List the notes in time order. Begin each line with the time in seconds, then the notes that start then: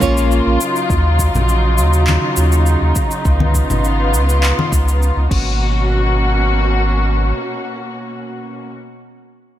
Already playing: C#3 G#3 A#3 F4
0.00 A#1 A#3 C#4 F4 C#5, kick, shaker
0.17 shaker
0.31 shaker
0.47 A#1
0.60 C#3 F#3 D#4, shaker
0.76 shaker
0.90 D#2, kick, shaker
1.19 kick, shaker
1.35 A#1, low conga, shaker
1.49 shaker
1.78 D#2, shaker
1.93 shaker
2.07 clap, high conga, shaker
2.37 D#2, shaker
2.52 shaker
2.66 shaker
2.82 D#2
2.96 kick, shaker
3.11 shaker
3.25 C#2 B3 F4, kick, shaker
3.40 high conga
3.55 kick, shaker
3.70 G#1, low conga, shaker
3.84 shaker
4.13 C#2, shaker
4.29 shaker
4.43 clap, shaker
4.59 high conga
4.72 C#2, kick, shaker
4.88 shaker
5.02 shaker
5.17 C#2
5.31 G#1 B2 A#3 C#4 F#4, kick, crash